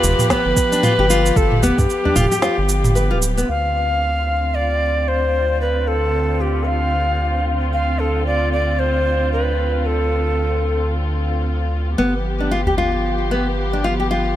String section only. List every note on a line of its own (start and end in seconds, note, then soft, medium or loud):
0.00 3.45 F3 medium
0.00 3.45 B3 medium
0.00 3.45 G4 medium
3.49 11.94 D3 medium
3.49 11.94 C4 medium
3.49 11.94 F4 medium
11.98 14.36 F3 medium
11.98 14.36 B3 medium
11.98 14.36 G4 medium